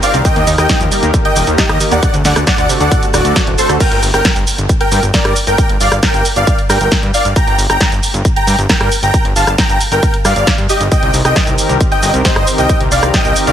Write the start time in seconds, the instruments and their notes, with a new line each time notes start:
0.03 analog synth pad D#3 C4 G4 A#4, synth arpeggio sound C4, supersaw synth D5 F5, open hi-hat, shaker
0.14 analog synth bass C2, synth arpeggio sound C4, closed hi-hat, shaker
0.25 synth arpeggio sound D#3, analog synth pad D#3 A#3 G4 A#4, supersaw synth D#5 G5, kick, closed hi-hat, shaker
0.36 analog synth bass D#2, synth arpeggio sound A#3, closed hi-hat
0.47 analog synth bass D#2, synth arpeggio sound D#4, open hi-hat, shaker
0.58 analog synth bass D#2, analog synth pad D#3 A#3 G4 A#4, synth arpeggio sound D#3, supersaw synth D#5 G5, cross-stick, closed hi-hat, shaker
0.69 analog synth pad D#3 A#3 G4 A#4, synth arpeggio sound D#4, kick, snare, closed hi-hat, shaker
0.80 analog synth bass D#2, synth arpeggio sound F3, closed hi-hat, shaker
0.92 analog synth pad D#3 A#3 G4 A#4, synth arpeggio sound G3, open hi-hat, shaker
1.03 analog synth bass D#2, synth arpeggio sound A#3, closed hi-hat, shaker
1.14 synth arpeggio sound D3, analog synth pad D#3 A#3 G4 A#4, kick, closed hi-hat, shaker
1.25 supersaw synth D#5 G5, closed hi-hat
1.36 analog synth bass D#1, open hi-hat, shaker
1.47 analog synth bass D#2, analog synth pad D#3 A#3 G4 A#4, synth arpeggio sound D#4, closed hi-hat, shaker
1.58 synth arpeggio sound D#4, supersaw synth G4 D#5, kick, snare, closed hi-hat, shaker
1.69 analog synth bass D#2, cross-stick, closed hi-hat
1.80 analog synth pad D#3 A#3 G4 A#4, synth arpeggio sound D#3, open hi-hat, shaker
1.92 analog synth bass D#2, synth arpeggio sound A#3, supersaw synth D5 F#5, closed hi-hat, shaker
2.03 analog synth pad D3 A3 F#4 A4, synth arpeggio sound D3, kick, closed hi-hat, shaker
2.14 analog synth bass D2, synth arpeggio sound C3, closed hi-hat, shaker
2.25 analog synth bass D2, synth arpeggio sound D3, supersaw synth D5 F#5, snare, open hi-hat, shaker
2.36 analog synth bass D2, analog synth pad D3 A3 F#4 A4, synth arpeggio sound A3, cross-stick, closed hi-hat, shaker
2.47 analog synth pad D3 A3 F#4 A4, supersaw synth D5 F#5, kick, snare, closed hi-hat, shaker
2.58 analog synth bass D2, synth arpeggio sound D3, closed hi-hat, shaker
2.69 synth arpeggio sound C3, analog synth pad D3 A3 F#4 A4, open hi-hat, shaker
2.80 analog synth bass D2, synth arpeggio sound D3, supersaw synth D5 F#5, closed hi-hat, shaker
2.91 synth arpeggio sound A2, analog synth pad D3 A3 F#4 A4, kick, closed hi-hat, shaker
3.03 synth arpeggio sound C3, closed hi-hat, shaker
3.14 analog synth bass D1, synth arpeggio sound D3, supersaw synth F#4 D5, cross-stick, open hi-hat, shaker
3.25 analog synth bass D2, analog synth pad D3 A3 F#4 A4, closed hi-hat, shaker
3.36 synth arpeggio sound F#3, kick, snare, closed hi-hat, shaker
3.47 analog synth bass D1, synth arpeggio sound C3, closed hi-hat
3.58 analog synth pad D3 A3 F#4 A4, synth arpeggio sound D3, supersaw synth A4 C5, open hi-hat, shaker
3.69 analog synth bass D2, synth arpeggio sound D3, cross-stick, closed hi-hat, shaker
3.80 supersaw synth A#4 G5, kick, closed hi-hat, crash, shaker
3.92 analog synth bass G1, closed hi-hat
4.03 analog synth bass G1, open hi-hat, shaker
4.14 analog synth bass G1, supersaw synth A#4 G5, cross-stick, closed hi-hat, shaker
4.25 kick, snare, closed hi-hat, shaker
4.36 analog synth bass G1, closed hi-hat, shaker
4.47 open hi-hat, shaker
4.58 analog synth bass G1, closed hi-hat, shaker
4.69 kick, closed hi-hat, shaker
4.80 supersaw synth A#4 G5, closed hi-hat
4.92 analog synth bass G2, open hi-hat, shaker
5.03 analog synth bass G1, closed hi-hat, shaker
5.14 supersaw synth A#4 D5, kick, snare, closed hi-hat, shaker
5.25 analog synth bass G2, cross-stick, closed hi-hat
5.36 open hi-hat, shaker
5.47 analog synth bass G1, supersaw synth A#4 G5, closed hi-hat, shaker
5.58 kick, closed hi-hat, shaker
5.69 analog synth bass G1, closed hi-hat
5.81 analog synth bass G1, supersaw synth D5 F5, open hi-hat, shaker
5.92 analog synth bass G1, cross-stick, closed hi-hat, shaker
6.03 supersaw synth A#4 G5, kick, snare, closed hi-hat, shaker
6.14 analog synth bass G1, closed hi-hat, shaker
6.25 open hi-hat, shaker
6.36 analog synth bass G1, supersaw synth D5 F5, closed hi-hat, shaker
6.47 kick, closed hi-hat, shaker
6.59 closed hi-hat
6.69 analog synth bass G2, supersaw synth A#4 G5, cross-stick, open hi-hat, shaker
6.81 analog synth bass G1, closed hi-hat, shaker
6.92 kick, snare, closed hi-hat, shaker
7.03 analog synth bass G2, closed hi-hat
7.14 supersaw synth D5 F5, open hi-hat, shaker
7.25 analog synth bass G1, closed hi-hat, shaker
7.36 supersaw synth G5 A#5, kick, closed hi-hat, shaker
7.47 analog synth bass G1, closed hi-hat
7.58 analog synth bass G1, open hi-hat, shaker
7.69 analog synth bass G1, supersaw synth G5 A#5, cross-stick, closed hi-hat, shaker
7.81 kick, snare, closed hi-hat, shaker
7.92 analog synth bass G1, closed hi-hat, shaker
8.03 open hi-hat, shaker
8.14 analog synth bass G1, closed hi-hat, shaker
8.25 kick, closed hi-hat, shaker
8.36 supersaw synth G5 A#5, closed hi-hat
8.47 analog synth bass G2, open hi-hat, shaker
8.58 analog synth bass G1, closed hi-hat, shaker
8.69 supersaw synth A#4 G5, kick, snare, closed hi-hat, shaker
8.81 analog synth bass G2, cross-stick, closed hi-hat
8.92 open hi-hat, shaker
9.03 analog synth bass G1, supersaw synth G5 A#5, closed hi-hat, shaker
9.14 kick, closed hi-hat, shaker
9.25 analog synth bass G1, closed hi-hat
9.36 analog synth bass G1, supersaw synth F5 A5, open hi-hat, shaker
9.47 analog synth bass G1, cross-stick, closed hi-hat, shaker
9.58 supersaw synth G5 A#5, kick, snare, closed hi-hat, shaker
9.69 analog synth bass G1, closed hi-hat, shaker
9.81 open hi-hat, shaker
9.92 analog synth bass G1, supersaw synth A#4 G5, closed hi-hat, shaker
10.03 kick, closed hi-hat, shaker
10.14 closed hi-hat
10.25 analog synth bass G2, supersaw synth D5 F5, cross-stick, open hi-hat, shaker
10.36 analog synth bass G1, closed hi-hat, shaker
10.47 kick, snare, closed hi-hat, shaker
10.58 analog synth bass G2, closed hi-hat
10.69 supersaw synth G4 D#5, open hi-hat, shaker
10.80 analog synth bass G1, closed hi-hat, shaker
10.92 analog synth pad D#3 C4 G4 A#4, supersaw synth D#5 G5, kick, closed hi-hat, shaker
11.03 analog synth bass C2, closed hi-hat
11.14 analog synth bass C2, open hi-hat, shaker
11.25 analog synth bass C2, analog synth pad D#3 C4 G4 A#4, supersaw synth D#5 G5, cross-stick, closed hi-hat, shaker
11.36 analog synth pad D#3 C4 G4 A#4, kick, snare, closed hi-hat, shaker
11.47 analog synth bass C2, closed hi-hat, shaker
11.58 analog synth pad D#3 C4 G4 A#4, open hi-hat, shaker
11.69 analog synth bass C2, closed hi-hat, shaker
11.80 analog synth pad D#3 C4 G4 A#4, kick, closed hi-hat, shaker
11.92 supersaw synth D#5 G5, closed hi-hat
12.03 analog synth bass G1, open hi-hat, shaker
12.14 analog synth bass C2, analog synth pad D#3 C4 G4 A#4, closed hi-hat, shaker
12.25 supersaw synth C5 D#5, kick, snare, closed hi-hat, shaker
12.36 analog synth bass G1, cross-stick, closed hi-hat
12.47 analog synth pad D#3 C4 G4 A#4, open hi-hat, shaker
12.58 analog synth bass C2, supersaw synth D#5 G5, closed hi-hat, shaker
12.69 analog synth pad D#3 C4 G4 A#4, kick, closed hi-hat, shaker
12.80 analog synth bass C2, closed hi-hat
12.91 analog synth bass C2, supersaw synth D5 F5, open hi-hat, shaker
13.03 analog synth bass C2, analog synth pad D#3 C4 G4 A#4, cross-stick, closed hi-hat, shaker
13.14 analog synth pad D#3 C4 G4 A#4, supersaw synth D#5 G5, kick, snare, closed hi-hat, shaker
13.25 analog synth bass C2, closed hi-hat, shaker
13.36 analog synth pad D#3 C4 G4 A#4, open hi-hat, shaker
13.47 analog synth bass C2, supersaw synth D5 F5, closed hi-hat, shaker